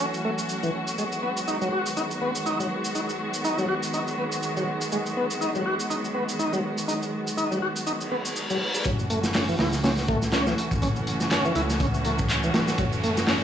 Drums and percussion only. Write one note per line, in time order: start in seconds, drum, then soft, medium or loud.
0.00 shaker medium
0.14 shaker soft
0.38 shaker medium
0.49 shaker soft
0.63 shaker soft
0.87 shaker medium
0.98 shaker soft
1.12 shaker soft
1.37 shaker medium
1.48 shaker soft
1.61 shaker soft
1.86 shaker medium
1.97 shaker soft
2.11 shaker soft
2.35 shaker medium
2.46 shaker soft
2.60 shaker soft
2.85 shaker medium
2.95 shaker soft
3.09 shaker soft
3.34 shaker medium
3.44 shaker soft
3.58 shaker soft
3.83 shaker medium
3.93 shaker soft
4.08 shaker soft
4.32 shaker medium
4.43 shaker soft
4.57 shaker soft
4.81 shaker medium
4.92 shaker soft
5.06 shaker soft
5.31 shaker medium
5.41 shaker soft
5.55 shaker soft
5.80 shaker medium
5.91 shaker soft
6.04 shaker soft
6.29 shaker medium
6.39 shaker soft
6.53 shaker soft
6.78 shaker medium
6.89 shaker medium
7.03 shaker soft
7.27 shaker medium
7.38 shaker medium
7.52 shaker soft
7.76 shaker medium
7.87 shaker medium
8.01 shaker soft
8.25 shaker medium
8.36 shaker medium
8.50 shaker soft
8.74 shaker medium
8.85 kick medium
8.85 closed hi-hat medium
8.85 shaker medium
8.99 shaker soft
9.10 closed hi-hat medium
9.24 snare medium
9.24 shaker medium
9.34 snare loud
9.34 clap loud
9.34 open hi-hat medium
9.34 shaker medium
9.48 shaker soft
9.59 snare medium
9.59 open hi-hat medium
9.73 snare soft
9.73 shaker medium
9.84 snare loud
9.84 open hi-hat medium
9.84 shaker medium
9.97 snare soft
9.97 shaker soft
10.08 kick medium
10.08 closed hi-hat medium
10.22 snare soft
10.22 shaker medium
10.32 snare loud
10.32 clap loud
10.32 closed hi-hat medium
10.32 shaker medium
10.47 snare soft
10.47 shaker soft
10.58 closed hi-hat medium
10.71 kick medium
10.71 shaker medium
10.82 kick loud
10.82 closed hi-hat medium
10.82 shaker medium
10.96 shaker soft
11.07 closed hi-hat medium
11.20 snare soft
11.20 shaker medium
11.31 snare loud
11.31 clap loud
11.31 closed hi-hat medium
11.31 shaker medium
11.45 shaker soft
11.55 closed hi-hat medium
11.70 snare soft
11.70 shaker medium
11.80 kick loud
11.80 closed hi-hat medium
11.80 shaker medium
11.94 shaker soft
12.05 closed hi-hat medium
12.19 kick medium
12.19 shaker medium
12.30 clap loud
12.30 closed hi-hat medium
12.30 shaker medium
12.43 shaker soft
12.54 snare loud
12.54 closed hi-hat medium
12.68 snare medium
12.68 shaker medium
12.78 kick loud
12.78 closed hi-hat medium
12.78 shaker medium
12.93 shaker soft
13.04 closed hi-hat medium
13.17 snare medium
13.17 shaker medium
13.27 snare loud
13.27 clap loud
13.27 open hi-hat medium
13.27 shaker medium